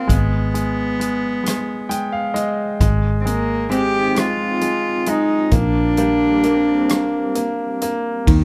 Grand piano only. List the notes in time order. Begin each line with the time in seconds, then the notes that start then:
Already playing: A#3 F4
0.07 G#3
0.54 G#3
1.00 G#3
1.44 G#3
1.89 G#3 G5
2.12 F5
2.34 G#3 D#5
2.81 G#3
3.25 G#3
3.70 G#3
4.15 G#3
4.62 G#3
5.07 G#3
5.52 A#3
5.98 A#3
6.44 A#3
6.89 A#3
7.35 A#3
7.82 A#3
8.27 D#3